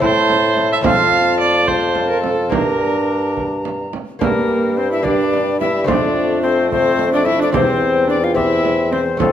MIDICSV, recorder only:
0, 0, Header, 1, 2, 480
1, 0, Start_track
1, 0, Tempo, 556586
1, 733, Time_signature, 6, 3, 24, 8
1, 8038, End_track
2, 0, Start_track
2, 0, Title_t, "Recorder"
2, 0, Program_c, 0, 74
2, 17, Note_on_c, 0, 81, 83
2, 719, Note_off_c, 0, 81, 0
2, 727, Note_on_c, 0, 81, 80
2, 1433, Note_off_c, 0, 81, 0
2, 1450, Note_on_c, 0, 81, 85
2, 2168, Note_on_c, 0, 82, 74
2, 2181, Note_off_c, 0, 81, 0
2, 3387, Note_off_c, 0, 82, 0
2, 3625, Note_on_c, 0, 70, 99
2, 4113, Note_on_c, 0, 72, 95
2, 4126, Note_off_c, 0, 70, 0
2, 4234, Note_off_c, 0, 72, 0
2, 4243, Note_on_c, 0, 76, 94
2, 4344, Note_on_c, 0, 74, 105
2, 4357, Note_off_c, 0, 76, 0
2, 4825, Note_off_c, 0, 74, 0
2, 4830, Note_on_c, 0, 76, 109
2, 5066, Note_off_c, 0, 76, 0
2, 5071, Note_on_c, 0, 74, 112
2, 5532, Note_off_c, 0, 74, 0
2, 5538, Note_on_c, 0, 72, 111
2, 5778, Note_off_c, 0, 72, 0
2, 5785, Note_on_c, 0, 72, 116
2, 6137, Note_off_c, 0, 72, 0
2, 6150, Note_on_c, 0, 74, 107
2, 6255, Note_on_c, 0, 76, 115
2, 6268, Note_off_c, 0, 74, 0
2, 6378, Note_off_c, 0, 76, 0
2, 6397, Note_on_c, 0, 74, 100
2, 6488, Note_off_c, 0, 74, 0
2, 6493, Note_on_c, 0, 72, 113
2, 6965, Note_off_c, 0, 72, 0
2, 6972, Note_on_c, 0, 74, 102
2, 7105, Note_on_c, 0, 77, 100
2, 7118, Note_off_c, 0, 74, 0
2, 7194, Note_off_c, 0, 77, 0
2, 7199, Note_on_c, 0, 76, 117
2, 7697, Note_on_c, 0, 72, 98
2, 7710, Note_off_c, 0, 76, 0
2, 7928, Note_off_c, 0, 72, 0
2, 7933, Note_on_c, 0, 69, 83
2, 8038, Note_off_c, 0, 69, 0
2, 8038, End_track
0, 0, End_of_file